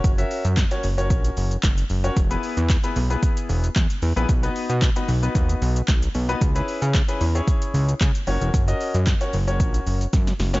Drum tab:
HH |xxoxxxoxxxoxxxox|xxoxxxoxxxoxxxox|xxoxxxoxxxoxxxox|xxoxxxoxxxoxxxox|
SH |xxxxxxxxxxxxxxxx|xxxxxxxxxxxxxxxx|xxxxxxxxxxxxxxxx|xxxxxxxxxxxxxxxx|
CP |----x-------x---|----x-------x---|----x-------x---|----x-------x---|
SD |----o-------o---|----o-------o---|----o-------o---|----o-------o---|
BD |o---o---o---o---|o---o---o---o---|o---o---o---o---|o---o---o---o---|

HH |xxoxxxoxxxoxxxox|
SH |xxxxxxxxxxxxxxxx|
CP |----x-----------|
SD |----o-------oooo|
BD |o---o---o---o---|